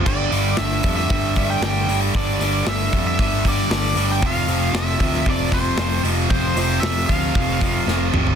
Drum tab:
CC |x---------------|----------------|----------------|----------------|
HH |--o-o-o-o-o-o-o-|o-o-o-o-o-o-o-o-|o-o-o-o-o-o-o-o-|o-o-o-o-o-o-----|
SD |----o--o----o---|--o-o-------o---|----o--o----o---|--o-o-------o---|
T2 |----------------|----------------|----------------|--------------o-|
FT |----------------|----------------|----------------|---------------o|
BD |o-----o-o-o-----|o-----o-o-o-----|o-----o-o-o-----|o-----o-o-o-----|